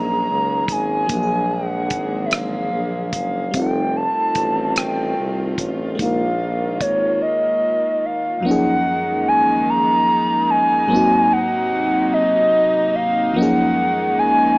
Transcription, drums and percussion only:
0.68 kick medium
0.68 closed hi-hat medium
1.09 kick medium
1.09 closed hi-hat medium
1.90 kick medium
1.90 closed hi-hat medium
2.31 cross-stick loud
2.31 closed hi-hat medium
3.13 kick medium
3.13 closed hi-hat medium
3.54 kick medium
3.54 closed hi-hat medium
4.35 kick medium
4.35 closed hi-hat medium
4.76 cross-stick loud
4.76 closed hi-hat medium
5.58 kick medium
5.58 closed hi-hat medium
5.99 kick medium
5.99 closed hi-hat medium
6.81 kick medium
6.81 closed hi-hat medium

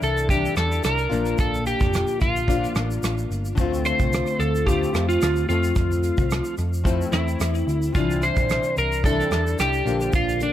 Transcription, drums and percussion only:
0.02 closed hi-hat soft
0.02 shaker soft
0.17 shaker medium
0.29 kick medium
0.29 closed hi-hat medium
0.29 shaker medium
0.45 shaker medium
0.56 cross-stick medium
0.56 closed hi-hat soft
0.56 shaker soft
0.72 shaker soft
0.84 cross-stick medium
0.84 closed hi-hat medium
0.84 shaker medium
0.98 shaker soft
1.12 closed hi-hat soft
1.12 shaker soft
1.26 shaker soft
1.38 kick loud
1.38 closed hi-hat medium
1.38 shaker medium
1.55 shaker medium
1.66 closed hi-hat medium
1.66 shaker medium
1.80 kick medium
1.80 shaker soft
1.94 cross-stick medium
1.94 closed hi-hat medium
1.94 shaker medium
2.07 shaker soft
2.21 kick medium
2.21 closed hi-hat soft
2.21 shaker soft
2.36 shaker medium
2.48 kick medium
2.48 closed hi-hat medium
2.48 shaker medium
2.64 shaker soft
2.75 cross-stick medium
2.75 closed hi-hat soft
2.75 shaker soft
2.91 shaker medium
3.03 cross-stick medium
3.03 closed hi-hat medium
3.03 shaker medium
3.18 shaker soft
3.32 closed hi-hat soft
3.32 shaker soft
3.45 shaker medium
3.57 kick loud
3.57 closed hi-hat medium
3.57 shaker medium
3.74 shaker medium
3.85 closed hi-hat medium
3.85 shaker soft
3.99 kick medium
3.99 shaker soft
4.13 cross-stick medium
4.13 closed hi-hat medium
4.13 shaker medium
4.26 shaker medium
4.40 closed hi-hat soft
4.40 shaker soft
4.55 shaker medium
4.67 kick medium
4.67 closed hi-hat medium
4.67 shaker medium
4.83 shaker medium
4.94 cross-stick medium
4.94 closed hi-hat soft
4.94 shaker soft
5.10 shaker soft
5.22 cross-stick medium
5.22 closed hi-hat medium
5.22 shaker medium
5.36 shaker soft
5.50 closed hi-hat soft
5.50 shaker soft
5.63 shaker medium
5.76 kick loud
5.76 closed hi-hat medium
5.76 shaker medium
5.92 shaker medium
6.03 closed hi-hat medium
6.03 shaker medium
6.18 kick medium
6.18 shaker medium
6.31 cross-stick medium
6.31 closed hi-hat medium
6.31 shaker medium
6.44 shaker soft
6.58 closed hi-hat soft
6.58 shaker soft
6.73 shaker medium
6.85 kick medium
6.85 closed hi-hat medium
6.85 shaker medium
7.01 shaker medium
7.12 cross-stick medium
7.12 closed hi-hat soft
7.12 shaker soft
7.28 shaker soft
7.40 cross-stick medium
7.40 closed hi-hat medium
7.40 shaker medium
7.55 shaker soft
7.69 closed hi-hat soft
7.69 shaker soft
7.82 shaker soft
7.95 kick loud
7.95 closed hi-hat medium
7.95 shaker medium
8.11 shaker medium
8.22 closed hi-hat medium
8.22 shaker medium
8.36 kick medium
8.36 shaker medium
8.49 cross-stick medium
8.49 closed hi-hat medium
8.49 shaker medium
8.63 shaker soft
8.77 closed hi-hat soft
8.77 shaker soft
8.92 shaker medium
9.04 kick medium
9.04 closed hi-hat medium
9.04 shaker medium
9.21 shaker soft
9.31 cross-stick medium
9.31 closed hi-hat soft
9.31 shaker soft
9.47 shaker medium
9.59 cross-stick medium
9.59 closed hi-hat medium
9.59 shaker medium
9.73 shaker soft
9.87 closed hi-hat soft
9.87 shaker soft
10.01 shaker medium
10.13 kick loud
10.13 closed hi-hat medium
10.13 shaker medium
10.29 shaker medium
10.40 closed hi-hat medium
10.40 shaker medium

